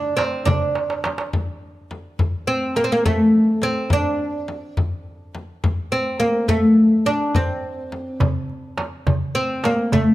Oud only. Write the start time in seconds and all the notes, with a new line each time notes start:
Already playing: D4
0.17 C4
0.45 D4
2.47 C4
2.77 A#3
2.84 C4
2.92 A#3
3.06 A3
3.63 C4
3.93 D4
5.92 C4
6.20 A#3
6.49 A3
7.06 D4
7.36 C4
9.35 C4
9.65 A#3
9.93 A3